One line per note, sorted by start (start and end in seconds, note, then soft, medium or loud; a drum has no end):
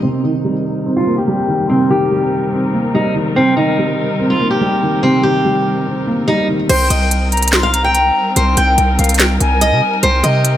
0.03 1.07 C3 medium
0.03 6.66 G3 medium
0.03 6.65 C4 medium
0.03 0.22 C4 medium
0.03 6.66 D#4 medium
0.03 6.66 A#4 medium
0.24 1.28 D#3 medium
0.24 0.93 D#4 medium
0.44 1.26 G3 medium
0.86 1.90 C4 medium
0.97 1.16 F4 medium
1.07 2.11 A#3 medium
1.18 1.67 G4 medium
1.28 2.09 G3 medium
1.48 1.89 D#3 medium
1.70 2.74 C3 medium
1.70 1.89 C4 medium
1.90 2.95 D#3 medium
1.90 2.91 G4 medium
2.11 2.93 G3 medium
2.53 3.36 C4 medium
2.73 3.36 A#3 medium
2.94 3.36 G3 medium
2.94 3.14 D#4 medium
3.15 3.36 D#3 medium
3.36 4.41 C3 medium
3.36 3.55 C4 medium
3.57 4.61 D#3 medium
3.57 4.26 D#4 medium
3.78 4.60 G3 medium
4.19 5.24 C4 medium
4.30 4.49 F4 medium
4.41 5.45 A#3 medium
4.50 5.00 G4 medium
4.61 5.43 G3 medium
4.82 5.22 D#3 medium
5.03 6.07 C3 medium
5.03 5.22 C4 medium
5.23 6.28 D#3 medium
5.23 6.24 G4 medium
5.45 6.26 G3 medium
5.86 6.70 C4 medium
6.07 6.70 A#3 medium
6.28 6.70 G3 medium
6.28 6.47 D#4 medium
6.49 6.70 D#3 medium
6.69 6.90 C2 loud
6.69 10.57 G3 medium
6.69 10.00 C4 medium
6.69 10.57 D#4 medium
6.69 10.57 A#4 loud
6.69 6.89 C5 loud
6.69 7.28 G5 loud
6.69 closed hi-hat medium
6.69 crash loud
6.90 8.11 C2 loud
6.90 7.59 D#5 medium
6.90 closed hi-hat medium
7.11 closed hi-hat medium
7.32 7.52 A#5 medium
7.32 closed hi-hat soft
7.37 closed hi-hat medium
7.42 closed hi-hat medium
7.48 closed hi-hat medium
7.52 7.73 C6 medium
7.52 snare loud
7.52 clap loud
7.52 closed hi-hat medium
7.63 7.82 F5 medium
7.73 8.32 A#5 loud
7.73 closed hi-hat medium
7.84 8.33 G5 medium
7.95 closed hi-hat medium
8.36 8.56 C2 loud
8.36 8.55 C5 medium
8.36 8.95 G5 loud
8.36 closed hi-hat medium
8.57 8.77 C2 loud
8.57 9.57 G5 medium
8.57 closed hi-hat medium
8.78 8.98 C2 loud
8.78 closed hi-hat medium
8.98 9.39 C2 loud
8.98 9.18 F5 medium
8.98 closed hi-hat medium
9.04 closed hi-hat medium
9.09 closed hi-hat medium
9.14 closed hi-hat medium
9.19 9.39 G5 medium
9.19 snare loud
9.19 clap loud
9.19 closed hi-hat medium
9.40 9.73 C2 loud
9.40 9.99 G#5 loud
9.40 closed hi-hat medium
9.61 9.80 D#5 medium
9.61 closed hi-hat medium
9.72 9.82 C3 loud
10.03 10.23 C2 loud
10.03 10.57 C4 medium
10.03 10.22 C5 loud
10.03 10.57 G5 loud
10.03 closed hi-hat medium
10.23 10.57 C3 loud
10.23 10.57 D#5 medium
10.23 closed hi-hat medium
10.45 closed hi-hat medium